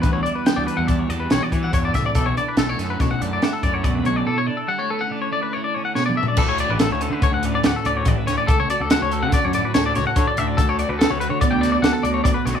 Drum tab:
CC |------------------------------|------------------------------|------------------------------|x-----------------------------|
HH |x--x--x--x--x--x--x--x--x--x--|x--x--x--x--x--x--x--x--x--x--|------------------------------|---x--x--x--x--x--x--x--x--x--|
SD |------o-----------o--------o--|------o--o--o-----o-----------|------------------------o-----|------o-----------o--------o--|
T2 |------------------------------|------------------------------|--------------------------o---|------------------------------|
FT |------------------------------|------------------------------|----------------------------o-|------------------------------|
BD |o-----------o--------o--o--o--|o-----------o--------o--o-----|------------------------------|o-----------o-----------o-----|

CC |------------------------------|------------------------------|
HH |x--x--x--x--x--x--x--x--x--x--|x--x--x--x--x--x--x--x--x--x--|
SD |------o-----o-----o--o--------|------o--------o--o--------o--|
T2 |------------------------------|------------------------------|
FT |------------------------------|------------------------------|
BD |o-----------o-----------o-----|o-----------o-----------o-----|